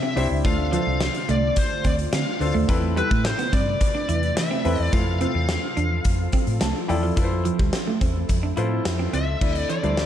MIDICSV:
0, 0, Header, 1, 9, 480
1, 0, Start_track
1, 0, Tempo, 560748
1, 381, Time_signature, 4, 2, 24, 8
1, 8610, End_track
2, 0, Start_track
2, 0, Title_t, "Lead electric guitar"
2, 0, Program_c, 0, 29
2, 0, Note_on_c, 0, 76, 94
2, 143, Note_off_c, 0, 76, 0
2, 153, Note_on_c, 0, 76, 89
2, 216, Note_off_c, 0, 76, 0
2, 390, Note_on_c, 0, 77, 99
2, 1114, Note_off_c, 0, 77, 0
2, 1117, Note_on_c, 0, 74, 79
2, 1351, Note_on_c, 0, 72, 80
2, 1356, Note_off_c, 0, 74, 0
2, 1593, Note_off_c, 0, 72, 0
2, 1597, Note_on_c, 0, 74, 76
2, 1660, Note_off_c, 0, 74, 0
2, 1837, Note_on_c, 0, 77, 84
2, 2165, Note_off_c, 0, 77, 0
2, 2549, Note_on_c, 0, 71, 78
2, 2783, Note_off_c, 0, 71, 0
2, 2786, Note_on_c, 0, 72, 85
2, 3007, Note_off_c, 0, 72, 0
2, 3026, Note_on_c, 0, 74, 90
2, 3739, Note_off_c, 0, 74, 0
2, 3743, Note_on_c, 0, 76, 106
2, 4128, Note_off_c, 0, 76, 0
2, 4128, Note_on_c, 0, 74, 106
2, 4223, Note_off_c, 0, 74, 0
2, 4227, Note_on_c, 0, 77, 101
2, 5630, Note_off_c, 0, 77, 0
2, 7829, Note_on_c, 0, 76, 83
2, 8214, Note_off_c, 0, 76, 0
2, 8214, Note_on_c, 0, 74, 83
2, 8300, Note_off_c, 0, 74, 0
2, 8303, Note_on_c, 0, 74, 82
2, 8610, Note_off_c, 0, 74, 0
2, 8610, End_track
3, 0, Start_track
3, 0, Title_t, "Grand piano"
3, 0, Program_c, 1, 0
3, 0, Control_c, 1, 64, 127
3, 0, Note_on_c, 1, 62, 66
3, 0, Note_on_c, 1, 64, 60
3, 0, Note_on_c, 1, 67, 59
3, 0, Note_on_c, 1, 72, 70
3, 135, Note_off_c, 1, 62, 0
3, 135, Note_on_c, 1, 62, 71
3, 138, Note_off_c, 1, 64, 0
3, 138, Note_on_c, 1, 64, 69
3, 144, Note_off_c, 1, 67, 0
3, 144, Note_on_c, 1, 67, 73
3, 145, Note_off_c, 1, 72, 0
3, 145, Note_on_c, 1, 72, 83
3, 328, Note_off_c, 1, 62, 0
3, 329, Note_off_c, 1, 64, 0
3, 332, Note_off_c, 1, 67, 0
3, 333, Note_off_c, 1, 72, 0
3, 380, Note_on_c, 1, 62, 71
3, 383, Note_on_c, 1, 65, 63
3, 388, Note_on_c, 1, 69, 66
3, 391, Note_on_c, 1, 72, 78
3, 393, Control_c, 1, 64, 0
3, 537, Control_c, 1, 64, 127
3, 570, Note_off_c, 1, 62, 0
3, 572, Note_off_c, 1, 65, 0
3, 574, Note_off_c, 1, 69, 0
3, 576, Note_off_c, 1, 72, 0
3, 621, Note_on_c, 1, 62, 64
3, 622, Note_on_c, 1, 65, 61
3, 626, Note_on_c, 1, 69, 62
3, 629, Note_on_c, 1, 72, 71
3, 1380, Note_off_c, 1, 62, 0
3, 1381, Note_off_c, 1, 65, 0
3, 1382, Note_off_c, 1, 69, 0
3, 1384, Note_off_c, 1, 72, 0
3, 2058, Note_on_c, 1, 62, 73
3, 2060, Note_on_c, 1, 65, 70
3, 2064, Note_on_c, 1, 69, 67
3, 2067, Note_on_c, 1, 72, 80
3, 2249, Note_off_c, 1, 62, 0
3, 2251, Note_off_c, 1, 65, 0
3, 2252, Note_off_c, 1, 69, 0
3, 2254, Note_off_c, 1, 72, 0
3, 2297, Note_on_c, 1, 60, 89
3, 2299, Note_on_c, 1, 64, 79
3, 2304, Note_on_c, 1, 69, 82
3, 2308, Note_on_c, 1, 71, 95
3, 2311, Control_c, 1, 64, 0
3, 2453, Control_c, 1, 64, 127
3, 2489, Note_off_c, 1, 60, 0
3, 2490, Note_off_c, 1, 64, 0
3, 2492, Note_off_c, 1, 69, 0
3, 2494, Note_off_c, 1, 71, 0
3, 2541, Note_on_c, 1, 60, 64
3, 2544, Note_on_c, 1, 64, 61
3, 2547, Note_on_c, 1, 69, 63
3, 2551, Note_on_c, 1, 71, 73
3, 3300, Note_off_c, 1, 60, 0
3, 3301, Note_off_c, 1, 64, 0
3, 3303, Note_off_c, 1, 69, 0
3, 3305, Note_off_c, 1, 71, 0
3, 3979, Note_on_c, 1, 60, 75
3, 3982, Note_on_c, 1, 64, 69
3, 3984, Note_on_c, 1, 69, 71
3, 3988, Note_on_c, 1, 71, 80
3, 4170, Note_off_c, 1, 60, 0
3, 4171, Note_off_c, 1, 64, 0
3, 4172, Note_off_c, 1, 69, 0
3, 4174, Note_off_c, 1, 71, 0
3, 4214, Note_on_c, 1, 64, 72
3, 4218, Note_on_c, 1, 65, 67
3, 4221, Note_on_c, 1, 69, 66
3, 4226, Note_on_c, 1, 72, 75
3, 4230, Control_c, 1, 64, 0
3, 4392, Control_c, 1, 64, 127
3, 4407, Note_off_c, 1, 64, 0
3, 4409, Note_off_c, 1, 65, 0
3, 4411, Note_off_c, 1, 69, 0
3, 4413, Note_off_c, 1, 72, 0
3, 4456, Note_on_c, 1, 60, 66
3, 4460, Note_on_c, 1, 65, 56
3, 4463, Note_on_c, 1, 69, 60
3, 4468, Note_on_c, 1, 72, 72
3, 5217, Note_off_c, 1, 60, 0
3, 5219, Note_off_c, 1, 65, 0
3, 5221, Note_off_c, 1, 69, 0
3, 5223, Note_off_c, 1, 72, 0
3, 5656, Note_on_c, 1, 81, 70
3, 5882, Note_off_c, 1, 81, 0
3, 5892, Note_on_c, 1, 64, 90
3, 5896, Note_on_c, 1, 65, 81
3, 5897, Note_on_c, 1, 79, 72
3, 5901, Note_on_c, 1, 69, 80
3, 5904, Note_on_c, 1, 74, 96
3, 6086, Note_off_c, 1, 64, 0
3, 6089, Note_off_c, 1, 65, 0
3, 6091, Note_off_c, 1, 69, 0
3, 6092, Note_off_c, 1, 74, 0
3, 6122, Note_off_c, 1, 79, 0
3, 6130, Note_on_c, 1, 64, 82
3, 6134, Note_on_c, 1, 65, 73
3, 6137, Note_on_c, 1, 69, 75
3, 6142, Note_on_c, 1, 71, 69
3, 6152, Control_c, 1, 64, 0
3, 6197, Note_off_c, 1, 71, 0
3, 6197, Note_on_c, 1, 72, 86
3, 6285, Control_c, 1, 64, 127
3, 6895, Note_off_c, 1, 64, 0
3, 6896, Note_off_c, 1, 65, 0
3, 6898, Note_off_c, 1, 69, 0
3, 6928, Note_off_c, 1, 72, 0
3, 7333, Note_on_c, 1, 64, 87
3, 7336, Note_on_c, 1, 65, 79
3, 7339, Note_on_c, 1, 69, 74
3, 7344, Note_on_c, 1, 72, 89
3, 7906, Note_off_c, 1, 64, 0
3, 7908, Note_off_c, 1, 65, 0
3, 7909, Note_off_c, 1, 69, 0
3, 7912, Note_off_c, 1, 72, 0
3, 8056, Note_on_c, 1, 62, 63
3, 8059, Note_on_c, 1, 64, 63
3, 8064, Note_on_c, 1, 69, 56
3, 8067, Note_on_c, 1, 74, 73
3, 8071, Control_c, 1, 64, 0
3, 8203, Control_c, 1, 64, 127
3, 8343, Note_off_c, 1, 62, 0
3, 8345, Note_off_c, 1, 64, 0
3, 8347, Note_off_c, 1, 69, 0
3, 8348, Note_off_c, 1, 74, 0
3, 8414, Note_on_c, 1, 62, 64
3, 8417, Note_on_c, 1, 64, 57
3, 8421, Note_on_c, 1, 69, 59
3, 8426, Note_on_c, 1, 72, 74
3, 8607, Note_off_c, 1, 62, 0
3, 8609, Note_off_c, 1, 64, 0
3, 8610, Note_off_c, 1, 69, 0
3, 8610, Note_off_c, 1, 72, 0
3, 8610, End_track
4, 0, Start_track
4, 0, Title_t, "Ambient pad"
4, 0, Program_c, 2, 92
4, 0, Note_on_c, 2, 48, 76
4, 0, Note_on_c, 2, 60, 68
4, 0, Note_on_c, 2, 62, 73
4, 0, Note_on_c, 2, 76, 71
4, 345, Note_off_c, 2, 76, 0
4, 362, Note_off_c, 2, 48, 0
4, 362, Note_off_c, 2, 62, 0
4, 383, Note_on_c, 2, 50, 81
4, 384, Note_on_c, 2, 57, 68
4, 384, Note_on_c, 2, 65, 85
4, 2266, Note_off_c, 2, 60, 0
4, 2283, Note_off_c, 2, 50, 0
4, 2283, Note_off_c, 2, 65, 0
4, 2302, Note_on_c, 2, 48, 79
4, 2302, Note_on_c, 2, 71, 86
4, 4188, Note_off_c, 2, 57, 0
4, 4202, Note_off_c, 2, 48, 0
4, 4202, Note_off_c, 2, 71, 0
4, 4220, Note_on_c, 2, 53, 75
4, 4220, Note_on_c, 2, 60, 70
4, 4222, Note_on_c, 2, 65, 75
4, 4222, Note_on_c, 2, 69, 87
4, 6121, Note_off_c, 2, 53, 0
4, 6122, Note_off_c, 2, 60, 0
4, 6122, Note_off_c, 2, 65, 0
4, 6122, Note_off_c, 2, 69, 0
4, 6136, Note_on_c, 2, 53, 75
4, 6137, Note_on_c, 2, 60, 70
4, 6137, Note_on_c, 2, 69, 82
4, 6137, Note_on_c, 2, 76, 66
4, 8039, Note_off_c, 2, 53, 0
4, 8040, Note_off_c, 2, 60, 0
4, 8040, Note_off_c, 2, 69, 0
4, 8040, Note_off_c, 2, 76, 0
4, 8057, Note_on_c, 2, 50, 76
4, 8057, Note_on_c, 2, 62, 65
4, 8058, Note_on_c, 2, 69, 84
4, 8059, Note_on_c, 2, 64, 68
4, 8610, Note_off_c, 2, 50, 0
4, 8610, Note_off_c, 2, 62, 0
4, 8610, Note_off_c, 2, 64, 0
4, 8610, Note_off_c, 2, 69, 0
4, 8610, End_track
5, 0, Start_track
5, 0, Title_t, "Clean electric guitar"
5, 0, Program_c, 3, 27
5, 23, Note_on_c, 3, 60, 73
5, 123, Note_off_c, 3, 60, 0
5, 143, Note_on_c, 3, 60, 77
5, 243, Note_off_c, 3, 60, 0
5, 382, Note_on_c, 3, 57, 88
5, 482, Note_off_c, 3, 57, 0
5, 619, Note_on_c, 3, 53, 82
5, 721, Note_off_c, 3, 53, 0
5, 1102, Note_on_c, 3, 57, 73
5, 1202, Note_off_c, 3, 57, 0
5, 1581, Note_on_c, 3, 60, 68
5, 1682, Note_off_c, 3, 60, 0
5, 1821, Note_on_c, 3, 60, 84
5, 1922, Note_off_c, 3, 60, 0
5, 2177, Note_on_c, 3, 57, 72
5, 2280, Note_off_c, 3, 57, 0
5, 2538, Note_on_c, 3, 55, 77
5, 2640, Note_off_c, 3, 55, 0
5, 2660, Note_on_c, 3, 57, 76
5, 2761, Note_off_c, 3, 57, 0
5, 2900, Note_on_c, 3, 59, 79
5, 3001, Note_off_c, 3, 59, 0
5, 3018, Note_on_c, 3, 60, 79
5, 3120, Note_off_c, 3, 60, 0
5, 3379, Note_on_c, 3, 62, 72
5, 3480, Note_off_c, 3, 62, 0
5, 3499, Note_on_c, 3, 64, 76
5, 3600, Note_off_c, 3, 64, 0
5, 3860, Note_on_c, 3, 60, 74
5, 3961, Note_off_c, 3, 60, 0
5, 3981, Note_on_c, 3, 60, 78
5, 4082, Note_off_c, 3, 60, 0
5, 4221, Note_on_c, 3, 57, 84
5, 4321, Note_off_c, 3, 57, 0
5, 4460, Note_on_c, 3, 60, 79
5, 4561, Note_off_c, 3, 60, 0
5, 4937, Note_on_c, 3, 62, 74
5, 5039, Note_off_c, 3, 62, 0
5, 5420, Note_on_c, 3, 60, 72
5, 5521, Note_off_c, 3, 60, 0
5, 5658, Note_on_c, 3, 57, 86
5, 5760, Note_off_c, 3, 57, 0
5, 6019, Note_on_c, 3, 53, 63
5, 6120, Note_off_c, 3, 53, 0
5, 6378, Note_on_c, 3, 53, 71
5, 6480, Note_off_c, 3, 53, 0
5, 6499, Note_on_c, 3, 55, 68
5, 6601, Note_off_c, 3, 55, 0
5, 6740, Note_on_c, 3, 57, 72
5, 6841, Note_off_c, 3, 57, 0
5, 6860, Note_on_c, 3, 60, 75
5, 6961, Note_off_c, 3, 60, 0
5, 7217, Note_on_c, 3, 62, 69
5, 7319, Note_off_c, 3, 62, 0
5, 7338, Note_on_c, 3, 64, 69
5, 7440, Note_off_c, 3, 64, 0
5, 7698, Note_on_c, 3, 60, 67
5, 7800, Note_off_c, 3, 60, 0
5, 7818, Note_on_c, 3, 60, 71
5, 7920, Note_off_c, 3, 60, 0
5, 8298, Note_on_c, 3, 52, 67
5, 8400, Note_off_c, 3, 52, 0
5, 8418, Note_on_c, 3, 55, 69
5, 8520, Note_off_c, 3, 55, 0
5, 8610, End_track
6, 0, Start_track
6, 0, Title_t, "Fingered electric bass"
6, 0, Program_c, 4, 33
6, 140, Note_on_c, 4, 36, 95
6, 231, Note_off_c, 4, 36, 0
6, 263, Note_on_c, 4, 37, 92
6, 352, Note_off_c, 4, 37, 0
6, 383, Note_on_c, 4, 38, 105
6, 653, Note_off_c, 4, 38, 0
6, 742, Note_on_c, 4, 36, 81
6, 922, Note_off_c, 4, 36, 0
6, 1102, Note_on_c, 4, 36, 85
6, 1282, Note_off_c, 4, 36, 0
6, 1583, Note_on_c, 4, 38, 91
6, 1763, Note_off_c, 4, 38, 0
6, 1822, Note_on_c, 4, 50, 99
6, 1912, Note_off_c, 4, 50, 0
6, 2059, Note_on_c, 4, 38, 95
6, 2150, Note_off_c, 4, 38, 0
6, 2180, Note_on_c, 4, 39, 84
6, 2271, Note_off_c, 4, 39, 0
6, 2301, Note_on_c, 4, 40, 105
6, 2571, Note_off_c, 4, 40, 0
6, 2663, Note_on_c, 4, 45, 87
6, 2842, Note_off_c, 4, 45, 0
6, 3022, Note_on_c, 4, 43, 94
6, 3202, Note_off_c, 4, 43, 0
6, 3500, Note_on_c, 4, 40, 90
6, 3680, Note_off_c, 4, 40, 0
6, 3742, Note_on_c, 4, 52, 99
6, 3832, Note_off_c, 4, 52, 0
6, 3981, Note_on_c, 4, 40, 91
6, 4071, Note_off_c, 4, 40, 0
6, 4102, Note_on_c, 4, 40, 76
6, 4192, Note_off_c, 4, 40, 0
6, 4219, Note_on_c, 4, 41, 104
6, 4490, Note_off_c, 4, 41, 0
6, 4577, Note_on_c, 4, 40, 84
6, 4759, Note_off_c, 4, 40, 0
6, 4939, Note_on_c, 4, 40, 87
6, 5120, Note_off_c, 4, 40, 0
6, 5180, Note_on_c, 4, 41, 95
6, 5361, Note_off_c, 4, 41, 0
6, 5540, Note_on_c, 4, 45, 83
6, 5631, Note_off_c, 4, 45, 0
6, 5659, Note_on_c, 4, 36, 88
6, 5750, Note_off_c, 4, 36, 0
6, 5901, Note_on_c, 4, 40, 91
6, 6081, Note_off_c, 4, 40, 0
6, 6139, Note_on_c, 4, 41, 101
6, 6410, Note_off_c, 4, 41, 0
6, 6500, Note_on_c, 4, 38, 75
6, 6591, Note_off_c, 4, 38, 0
6, 6860, Note_on_c, 4, 40, 82
6, 7040, Note_off_c, 4, 40, 0
6, 7100, Note_on_c, 4, 41, 95
6, 7281, Note_off_c, 4, 41, 0
6, 7339, Note_on_c, 4, 45, 84
6, 7520, Note_off_c, 4, 45, 0
6, 7579, Note_on_c, 4, 41, 83
6, 7760, Note_off_c, 4, 41, 0
6, 7819, Note_on_c, 4, 37, 85
6, 7999, Note_off_c, 4, 37, 0
6, 8059, Note_on_c, 4, 38, 93
6, 8240, Note_off_c, 4, 38, 0
6, 8419, Note_on_c, 4, 38, 88
6, 8600, Note_off_c, 4, 38, 0
6, 8610, End_track
7, 0, Start_track
7, 0, Title_t, "Muted clean electric guitar strokes"
7, 743, Note_on_c, 9, 29, 43
7, 828, Note_off_c, 9, 29, 0
7, 2057, Note_on_c, 9, 29, 45
7, 2143, Note_off_c, 9, 29, 0
7, 2418, Note_on_c, 9, 29, 43
7, 2503, Note_off_c, 9, 29, 0
7, 2779, Note_on_c, 9, 29, 42
7, 2865, Note_off_c, 9, 29, 0
7, 3259, Note_on_c, 9, 29, 48
7, 3344, Note_off_c, 9, 29, 0
7, 3740, Note_on_c, 9, 29, 47
7, 3825, Note_off_c, 9, 29, 0
7, 4581, Note_on_c, 9, 29, 45
7, 4666, Note_off_c, 9, 29, 0
7, 5899, Note_on_c, 9, 29, 44
7, 5984, Note_off_c, 9, 29, 0
7, 6259, Note_on_c, 9, 29, 43
7, 6345, Note_off_c, 9, 29, 0
7, 6620, Note_on_c, 9, 29, 38
7, 6706, Note_off_c, 9, 29, 0
7, 7099, Note_on_c, 9, 29, 43
7, 7185, Note_off_c, 9, 29, 0
7, 7577, Note_on_c, 9, 29, 44
7, 7663, Note_off_c, 9, 29, 0
7, 8179, Note_on_c, 9, 29, 41
7, 8265, Note_off_c, 9, 29, 0
7, 8537, Note_on_c, 9, 29, 41
7, 8610, Note_off_c, 9, 29, 0
7, 8610, End_track
8, 0, Start_track
8, 0, Title_t, "Muted fingered electric bass strokes"
8, 5420, Note_on_c, 9, 29, 45
8, 5506, Note_off_c, 9, 29, 0
8, 8610, End_track
9, 0, Start_track
9, 0, Title_t, "Drums"
9, 145, Note_on_c, 9, 46, 66
9, 231, Note_off_c, 9, 46, 0
9, 382, Note_on_c, 9, 42, 86
9, 383, Note_on_c, 9, 36, 112
9, 467, Note_off_c, 9, 42, 0
9, 468, Note_off_c, 9, 36, 0
9, 624, Note_on_c, 9, 42, 81
9, 709, Note_off_c, 9, 42, 0
9, 860, Note_on_c, 9, 38, 100
9, 860, Note_on_c, 9, 42, 78
9, 945, Note_off_c, 9, 42, 0
9, 946, Note_off_c, 9, 38, 0
9, 980, Note_on_c, 9, 42, 63
9, 1066, Note_off_c, 9, 42, 0
9, 1103, Note_on_c, 9, 42, 76
9, 1189, Note_off_c, 9, 42, 0
9, 1337, Note_on_c, 9, 42, 93
9, 1342, Note_on_c, 9, 36, 84
9, 1423, Note_off_c, 9, 42, 0
9, 1427, Note_off_c, 9, 36, 0
9, 1578, Note_on_c, 9, 42, 69
9, 1582, Note_on_c, 9, 36, 87
9, 1664, Note_off_c, 9, 42, 0
9, 1667, Note_off_c, 9, 36, 0
9, 1701, Note_on_c, 9, 42, 55
9, 1787, Note_off_c, 9, 42, 0
9, 1820, Note_on_c, 9, 42, 97
9, 1821, Note_on_c, 9, 38, 117
9, 1906, Note_off_c, 9, 38, 0
9, 1906, Note_off_c, 9, 42, 0
9, 2062, Note_on_c, 9, 46, 66
9, 2148, Note_off_c, 9, 46, 0
9, 2301, Note_on_c, 9, 36, 111
9, 2301, Note_on_c, 9, 42, 88
9, 2387, Note_off_c, 9, 36, 0
9, 2387, Note_off_c, 9, 42, 0
9, 2545, Note_on_c, 9, 42, 76
9, 2630, Note_off_c, 9, 42, 0
9, 2663, Note_on_c, 9, 36, 99
9, 2749, Note_off_c, 9, 36, 0
9, 2780, Note_on_c, 9, 38, 105
9, 2780, Note_on_c, 9, 42, 77
9, 2865, Note_off_c, 9, 42, 0
9, 2866, Note_off_c, 9, 38, 0
9, 2900, Note_on_c, 9, 42, 61
9, 2985, Note_off_c, 9, 42, 0
9, 3022, Note_on_c, 9, 36, 96
9, 3023, Note_on_c, 9, 42, 75
9, 3107, Note_off_c, 9, 36, 0
9, 3108, Note_off_c, 9, 42, 0
9, 3259, Note_on_c, 9, 42, 97
9, 3262, Note_on_c, 9, 36, 88
9, 3344, Note_off_c, 9, 42, 0
9, 3347, Note_off_c, 9, 36, 0
9, 3500, Note_on_c, 9, 42, 70
9, 3585, Note_off_c, 9, 42, 0
9, 3621, Note_on_c, 9, 42, 56
9, 3706, Note_off_c, 9, 42, 0
9, 3739, Note_on_c, 9, 38, 117
9, 3739, Note_on_c, 9, 42, 96
9, 3824, Note_off_c, 9, 42, 0
9, 3825, Note_off_c, 9, 38, 0
9, 3980, Note_on_c, 9, 46, 66
9, 4066, Note_off_c, 9, 46, 0
9, 4218, Note_on_c, 9, 42, 91
9, 4220, Note_on_c, 9, 36, 113
9, 4304, Note_off_c, 9, 42, 0
9, 4305, Note_off_c, 9, 36, 0
9, 4458, Note_on_c, 9, 42, 82
9, 4544, Note_off_c, 9, 42, 0
9, 4696, Note_on_c, 9, 38, 104
9, 4696, Note_on_c, 9, 42, 76
9, 4782, Note_off_c, 9, 38, 0
9, 4782, Note_off_c, 9, 42, 0
9, 4939, Note_on_c, 9, 42, 74
9, 5025, Note_off_c, 9, 42, 0
9, 5175, Note_on_c, 9, 42, 94
9, 5180, Note_on_c, 9, 36, 85
9, 5261, Note_off_c, 9, 42, 0
9, 5265, Note_off_c, 9, 36, 0
9, 5414, Note_on_c, 9, 42, 70
9, 5419, Note_on_c, 9, 36, 81
9, 5499, Note_off_c, 9, 42, 0
9, 5505, Note_off_c, 9, 36, 0
9, 5538, Note_on_c, 9, 42, 53
9, 5624, Note_off_c, 9, 42, 0
9, 5655, Note_on_c, 9, 42, 95
9, 5656, Note_on_c, 9, 38, 113
9, 5741, Note_off_c, 9, 42, 0
9, 5742, Note_off_c, 9, 38, 0
9, 5900, Note_on_c, 9, 46, 61
9, 5985, Note_off_c, 9, 46, 0
9, 6136, Note_on_c, 9, 42, 83
9, 6138, Note_on_c, 9, 36, 103
9, 6222, Note_off_c, 9, 42, 0
9, 6224, Note_off_c, 9, 36, 0
9, 6379, Note_on_c, 9, 42, 78
9, 6465, Note_off_c, 9, 42, 0
9, 6501, Note_on_c, 9, 36, 90
9, 6586, Note_off_c, 9, 36, 0
9, 6615, Note_on_c, 9, 42, 73
9, 6616, Note_on_c, 9, 38, 98
9, 6701, Note_off_c, 9, 38, 0
9, 6701, Note_off_c, 9, 42, 0
9, 6858, Note_on_c, 9, 42, 70
9, 6859, Note_on_c, 9, 36, 90
9, 6944, Note_off_c, 9, 42, 0
9, 6945, Note_off_c, 9, 36, 0
9, 7096, Note_on_c, 9, 42, 91
9, 7100, Note_on_c, 9, 36, 80
9, 7181, Note_off_c, 9, 42, 0
9, 7185, Note_off_c, 9, 36, 0
9, 7337, Note_on_c, 9, 42, 64
9, 7422, Note_off_c, 9, 42, 0
9, 7578, Note_on_c, 9, 42, 92
9, 7579, Note_on_c, 9, 38, 115
9, 7664, Note_off_c, 9, 38, 0
9, 7664, Note_off_c, 9, 42, 0
9, 7820, Note_on_c, 9, 42, 64
9, 7905, Note_off_c, 9, 42, 0
9, 8058, Note_on_c, 9, 36, 104
9, 8058, Note_on_c, 9, 49, 81
9, 8144, Note_off_c, 9, 36, 0
9, 8144, Note_off_c, 9, 49, 0
9, 8178, Note_on_c, 9, 42, 43
9, 8264, Note_off_c, 9, 42, 0
9, 8299, Note_on_c, 9, 42, 76
9, 8385, Note_off_c, 9, 42, 0
9, 8420, Note_on_c, 9, 42, 50
9, 8506, Note_off_c, 9, 42, 0
9, 8538, Note_on_c, 9, 38, 96
9, 8610, Note_off_c, 9, 38, 0
9, 8610, End_track
0, 0, End_of_file